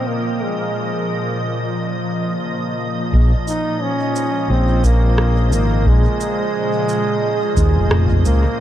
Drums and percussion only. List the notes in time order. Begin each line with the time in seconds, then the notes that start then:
3.14 kick
3.48 shaker
4.16 shaker
4.84 kick, shaker
5.18 cross-stick
5.52 shaker
5.87 kick
6.21 shaker
6.89 shaker
7.57 kick, shaker
7.91 cross-stick
8.10 kick
8.25 shaker